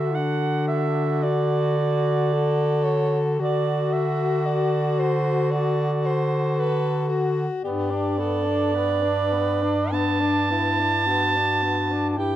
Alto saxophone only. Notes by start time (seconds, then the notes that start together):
Already playing: E5
0.15 F#5
0.68 E5
1.23 D5
2.84 C#5
3.41 D5
3.93 E5
4.46 D5
5.00 C5
5.51 D5
6.06 C5
6.59 B4
7.64 D5
9.92 A5
12.11 A5
12.18 G5